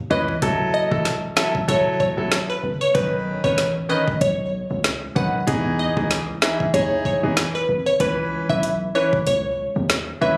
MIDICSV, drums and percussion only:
0, 0, Header, 1, 2, 480
1, 0, Start_track
1, 0, Tempo, 631579
1, 321, Time_signature, 4, 2, 24, 8
1, 7883, End_track
2, 0, Start_track
2, 0, Title_t, "Drums"
2, 80, Note_on_c, 9, 43, 110
2, 156, Note_off_c, 9, 43, 0
2, 215, Note_on_c, 9, 43, 91
2, 291, Note_off_c, 9, 43, 0
2, 320, Note_on_c, 9, 36, 122
2, 320, Note_on_c, 9, 42, 69
2, 396, Note_off_c, 9, 36, 0
2, 396, Note_off_c, 9, 42, 0
2, 696, Note_on_c, 9, 36, 92
2, 772, Note_off_c, 9, 36, 0
2, 800, Note_on_c, 9, 38, 68
2, 801, Note_on_c, 9, 42, 84
2, 876, Note_off_c, 9, 38, 0
2, 877, Note_off_c, 9, 42, 0
2, 1039, Note_on_c, 9, 38, 109
2, 1115, Note_off_c, 9, 38, 0
2, 1177, Note_on_c, 9, 36, 107
2, 1253, Note_off_c, 9, 36, 0
2, 1280, Note_on_c, 9, 36, 94
2, 1281, Note_on_c, 9, 42, 70
2, 1356, Note_off_c, 9, 36, 0
2, 1357, Note_off_c, 9, 42, 0
2, 1520, Note_on_c, 9, 36, 95
2, 1596, Note_off_c, 9, 36, 0
2, 1760, Note_on_c, 9, 38, 103
2, 1760, Note_on_c, 9, 42, 75
2, 1836, Note_off_c, 9, 38, 0
2, 1836, Note_off_c, 9, 42, 0
2, 2240, Note_on_c, 9, 42, 72
2, 2241, Note_on_c, 9, 36, 120
2, 2316, Note_off_c, 9, 42, 0
2, 2317, Note_off_c, 9, 36, 0
2, 2616, Note_on_c, 9, 36, 98
2, 2692, Note_off_c, 9, 36, 0
2, 2719, Note_on_c, 9, 38, 70
2, 2720, Note_on_c, 9, 42, 87
2, 2795, Note_off_c, 9, 38, 0
2, 2796, Note_off_c, 9, 42, 0
2, 3098, Note_on_c, 9, 36, 100
2, 3174, Note_off_c, 9, 36, 0
2, 3201, Note_on_c, 9, 36, 98
2, 3201, Note_on_c, 9, 42, 66
2, 3277, Note_off_c, 9, 36, 0
2, 3277, Note_off_c, 9, 42, 0
2, 3681, Note_on_c, 9, 38, 97
2, 3681, Note_on_c, 9, 42, 77
2, 3757, Note_off_c, 9, 38, 0
2, 3757, Note_off_c, 9, 42, 0
2, 3922, Note_on_c, 9, 36, 99
2, 3998, Note_off_c, 9, 36, 0
2, 4161, Note_on_c, 9, 36, 114
2, 4161, Note_on_c, 9, 42, 76
2, 4237, Note_off_c, 9, 36, 0
2, 4237, Note_off_c, 9, 42, 0
2, 4536, Note_on_c, 9, 36, 95
2, 4612, Note_off_c, 9, 36, 0
2, 4641, Note_on_c, 9, 38, 72
2, 4642, Note_on_c, 9, 42, 87
2, 4717, Note_off_c, 9, 38, 0
2, 4718, Note_off_c, 9, 42, 0
2, 4880, Note_on_c, 9, 38, 120
2, 4956, Note_off_c, 9, 38, 0
2, 5018, Note_on_c, 9, 36, 101
2, 5094, Note_off_c, 9, 36, 0
2, 5121, Note_on_c, 9, 36, 92
2, 5123, Note_on_c, 9, 42, 69
2, 5197, Note_off_c, 9, 36, 0
2, 5199, Note_off_c, 9, 42, 0
2, 5360, Note_on_c, 9, 36, 100
2, 5436, Note_off_c, 9, 36, 0
2, 5600, Note_on_c, 9, 38, 105
2, 5600, Note_on_c, 9, 42, 78
2, 5676, Note_off_c, 9, 38, 0
2, 5676, Note_off_c, 9, 42, 0
2, 6080, Note_on_c, 9, 42, 71
2, 6081, Note_on_c, 9, 36, 118
2, 6156, Note_off_c, 9, 42, 0
2, 6157, Note_off_c, 9, 36, 0
2, 6456, Note_on_c, 9, 36, 91
2, 6532, Note_off_c, 9, 36, 0
2, 6560, Note_on_c, 9, 42, 87
2, 6636, Note_off_c, 9, 42, 0
2, 6938, Note_on_c, 9, 36, 107
2, 7014, Note_off_c, 9, 36, 0
2, 7042, Note_on_c, 9, 42, 69
2, 7118, Note_off_c, 9, 42, 0
2, 7521, Note_on_c, 9, 38, 104
2, 7521, Note_on_c, 9, 42, 77
2, 7597, Note_off_c, 9, 38, 0
2, 7597, Note_off_c, 9, 42, 0
2, 7883, End_track
0, 0, End_of_file